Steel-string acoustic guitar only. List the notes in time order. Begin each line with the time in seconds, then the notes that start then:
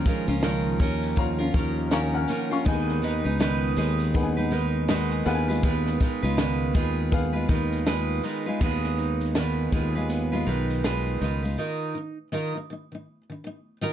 0.05 D#3 C#4 F4 A#4
0.27 C#4 F4 A#4
0.43 D#3 C#4 F4 A#4
0.79 D#3 C#4 F4 A#4
1.39 C#4 F4 A#4
1.53 D#3 C#4 F4 A#4
1.91 D#3 C#4 F4 A#4
2.28 D#3 C#4 F4 A#4
2.50 C#4 F4 A#4
2.65 D#3 G#3 D#4 B4
3.02 D#3 G#3 D#4 B4
3.24 G#3 D#4 B4
3.40 D#3 G#3 D#4 B4
3.77 D#3 G#3 D#4 B4
4.37 G#3 D#4 B4
4.50 D#3 G#3 D#4 B4
4.88 D#3 G#3 D#4 B4
5.26 D#3 G#3 F4 B4
5.48 G#3 F4 B4
5.63 D#3 G#3 F4 B4
6.01 D#3 G#3 F4 B4
6.22 G#3 F4 B4
6.37 D#3 G#3 F4 B4
6.74 D#3 G#3 F4 B4
7.33 G#3 F4 B4
7.49 D#3 G#3 F4 B4
7.86 D#3 G#3 F4 B4
8.23 D#3 G#3 F4 B4
8.46 G#3 F4 B4
8.61 D#3 G#3 F4 B4
9.35 D#3 G#3 F4 B4
9.72 D#3 G#3 F4 B4
9.95 G#3 F4 B4
10.32 G#3 F4 B4
10.46 D#3 G#3 F4 B4
10.84 D#3 G#3 F4 B4
11.21 D#3 G#3 F4 B4
11.42 G#3 F4 B4
11.58 D#3 D#4 F4 A#4
11.95 D#3 D#4
12.32 D#3 D#4 F4 A#4
12.55 D#3 D#4
12.70 D#3 D#4
12.92 D#3 D#4
13.30 D#3 D#4
13.44 D#3 D#4
13.81 D#3 D#4 F4 A#4